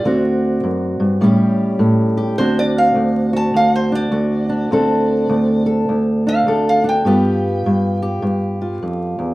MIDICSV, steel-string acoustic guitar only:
0, 0, Header, 1, 2, 480
1, 0, Start_track
1, 0, Tempo, 584795
1, 39, Time_signature, 4, 2, 24, 8
1, 7667, End_track
2, 0, Start_track
2, 0, Title_t, "Steel-string acoustic guitar"
2, 0, Program_c, 0, 25
2, 36, Note_on_c, 0, 38, 70
2, 44, Note_on_c, 0, 60, 54
2, 49, Note_on_c, 0, 62, 54
2, 55, Note_on_c, 0, 66, 58
2, 516, Note_off_c, 0, 38, 0
2, 521, Note_on_c, 0, 42, 61
2, 815, Note_off_c, 0, 42, 0
2, 818, Note_on_c, 0, 43, 62
2, 978, Note_off_c, 0, 60, 0
2, 979, Note_off_c, 0, 62, 0
2, 983, Note_off_c, 0, 66, 0
2, 992, Note_on_c, 0, 45, 67
2, 995, Note_off_c, 0, 43, 0
2, 997, Note_on_c, 0, 55, 60
2, 1012, Note_on_c, 0, 61, 53
2, 1017, Note_on_c, 0, 67, 60
2, 1461, Note_off_c, 0, 45, 0
2, 1471, Note_on_c, 0, 45, 72
2, 1775, Note_off_c, 0, 67, 0
2, 1785, Note_on_c, 0, 67, 67
2, 1936, Note_off_c, 0, 67, 0
2, 1941, Note_off_c, 0, 61, 0
2, 1952, Note_off_c, 0, 45, 0
2, 1955, Note_off_c, 0, 55, 0
2, 1956, Note_on_c, 0, 38, 65
2, 1962, Note_on_c, 0, 60, 56
2, 1966, Note_on_c, 0, 62, 53
2, 1972, Note_on_c, 0, 66, 58
2, 2418, Note_off_c, 0, 38, 0
2, 2422, Note_on_c, 0, 38, 66
2, 2730, Note_off_c, 0, 66, 0
2, 2734, Note_on_c, 0, 66, 59
2, 2903, Note_off_c, 0, 38, 0
2, 2906, Note_on_c, 0, 38, 68
2, 3213, Note_off_c, 0, 62, 0
2, 3216, Note_on_c, 0, 62, 54
2, 3366, Note_off_c, 0, 38, 0
2, 3369, Note_off_c, 0, 66, 0
2, 3375, Note_on_c, 0, 38, 66
2, 3379, Note_on_c, 0, 66, 60
2, 3684, Note_off_c, 0, 62, 0
2, 3687, Note_on_c, 0, 62, 55
2, 3844, Note_off_c, 0, 66, 0
2, 3854, Note_off_c, 0, 38, 0
2, 3854, Note_off_c, 0, 60, 0
2, 3864, Note_on_c, 0, 38, 65
2, 3874, Note_on_c, 0, 60, 52
2, 3878, Note_off_c, 0, 62, 0
2, 3881, Note_on_c, 0, 69, 64
2, 3882, Note_on_c, 0, 62, 57
2, 4335, Note_off_c, 0, 38, 0
2, 4345, Note_on_c, 0, 38, 75
2, 4637, Note_off_c, 0, 69, 0
2, 4647, Note_on_c, 0, 69, 64
2, 4822, Note_off_c, 0, 38, 0
2, 4832, Note_on_c, 0, 38, 69
2, 5140, Note_off_c, 0, 62, 0
2, 5143, Note_on_c, 0, 62, 55
2, 5297, Note_off_c, 0, 38, 0
2, 5306, Note_on_c, 0, 38, 73
2, 5308, Note_off_c, 0, 69, 0
2, 5318, Note_on_c, 0, 69, 67
2, 5610, Note_off_c, 0, 62, 0
2, 5613, Note_on_c, 0, 62, 60
2, 5773, Note_off_c, 0, 60, 0
2, 5774, Note_off_c, 0, 69, 0
2, 5783, Note_off_c, 0, 38, 0
2, 5786, Note_on_c, 0, 43, 72
2, 5798, Note_off_c, 0, 62, 0
2, 5798, Note_on_c, 0, 59, 57
2, 5801, Note_on_c, 0, 65, 59
2, 5808, Note_on_c, 0, 67, 66
2, 6270, Note_off_c, 0, 43, 0
2, 6288, Note_on_c, 0, 43, 73
2, 6576, Note_off_c, 0, 67, 0
2, 6586, Note_on_c, 0, 67, 66
2, 6739, Note_off_c, 0, 43, 0
2, 6749, Note_on_c, 0, 43, 75
2, 7061, Note_off_c, 0, 65, 0
2, 7071, Note_on_c, 0, 65, 54
2, 7233, Note_off_c, 0, 43, 0
2, 7243, Note_on_c, 0, 41, 58
2, 7537, Note_off_c, 0, 41, 0
2, 7540, Note_on_c, 0, 40, 61
2, 7667, Note_off_c, 0, 40, 0
2, 7667, Note_off_c, 0, 59, 0
2, 7667, Note_off_c, 0, 65, 0
2, 7667, Note_off_c, 0, 67, 0
2, 7667, End_track
0, 0, End_of_file